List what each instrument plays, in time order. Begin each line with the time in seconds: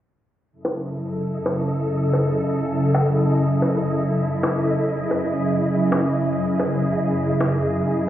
0.51 string machine F#2 C#3 E4 A4, synth texture D#5
0.65 high bongo
1.46 high bongo
2.13 high bongo
2.95 high bongo
3.62 high bongo
4.43 high bongo
4.84 string machine C#3 G#4
5.11 high bongo
5.92 high bongo
6.60 high bongo
7.41 high bongo